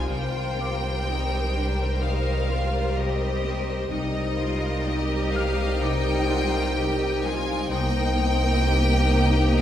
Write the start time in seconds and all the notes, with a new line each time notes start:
Already playing: C4 F4 G#5
0.09 C2 C3 D#3 G3 A#4 C5 G5
0.58 C4 D6
1.06 C4 D#4
1.53 C3 D4
2.00 C3 D#4 F5
2.49 C4 F4
2.96 C3 G4 D#5
3.44 C4
3.90 C2 C3 G3 D#4 A#4 D#5
4.39 C4 F4
4.86 C4 G4
5.33 C3 F5 F6
5.80 C3 D#4 G5 D6
6.29 C4 F4
6.76 C3 G4
7.23 C4 F4 G#5
7.69 C2 C3 A#3 D#4 A#4 C5 D#5 G5 C6
8.19 C4
8.66 C4 G4
9.14 C3